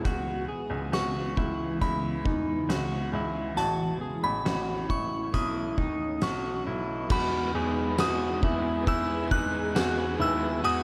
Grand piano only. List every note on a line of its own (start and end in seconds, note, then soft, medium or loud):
0.05 0.44 C#2 medium
0.70 0.90 C#2 medium
0.92 1.32 C#2 medium
1.37 1.76 C#2 medium
1.82 2.20 C#2 medium
2.26 2.65 E2 medium
2.69 3.08 C#2 medium
3.13 3.58 C#2 medium
3.57 3.97 A1 medium
4.23 4.43 A1 medium
4.45 4.85 A1 medium
4.90 5.29 A1 medium
5.34 5.73 B1 loud
5.77 6.17 D#2 medium
6.22 6.61 B1 medium
6.67 7.06 B1 medium
7.10 7.49 E2 medium
7.55 7.94 E2 medium
7.99 8.38 E2 medium
8.43 8.82 E2 medium
8.87 9.26 E2 loud
9.31 9.70 E2 medium
9.75 10.14 E2 loud
10.20 10.59 D#2 medium
10.64 10.83 E2 medium